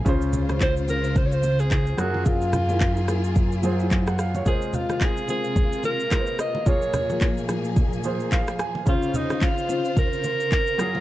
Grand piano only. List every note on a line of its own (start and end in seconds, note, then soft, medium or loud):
0.05 1.94 C#3 medium
0.05 1.95 C#4 medium
0.05 1.95 F4 medium
0.05 1.96 C5 medium
1.97 3.60 F#3 medium
1.97 3.60 F4 medium
1.97 3.61 G#4 medium
1.97 3.62 A#4 medium
3.63 4.46 F#3 medium
3.63 4.45 F4 medium
3.63 4.47 G#4 medium
3.63 3.92 C5 medium
4.08 4.18 F#5 medium
4.19 4.34 F5 medium
4.35 4.61 C#5 medium
4.45 6.08 G#3 medium
4.45 6.08 F4 medium
4.45 6.09 A#4 medium
4.45 6.09 C5 medium
6.11 6.66 G#3 soft
6.11 6.65 F4 soft
6.11 6.67 A#4 soft
6.11 6.20 B4 soft
6.20 6.71 C5 medium
6.65 8.01 A#3 medium
6.65 8.01 F4 medium
6.65 8.02 G#4 medium
6.65 8.03 C#5 medium
8.04 8.87 A#3 medium
8.04 8.86 F4 medium
8.04 8.87 G#4 medium
8.04 8.87 C5 medium
8.32 8.57 F5 medium
8.60 8.85 G#5 medium
8.85 10.75 C#3 medium
8.85 10.75 C#4 medium
8.85 10.76 F4 medium
8.85 10.77 C5 medium
10.78 11.00 F#3 medium
10.78 11.00 F4 medium
10.78 11.00 G#4 medium
10.78 11.00 A#4 medium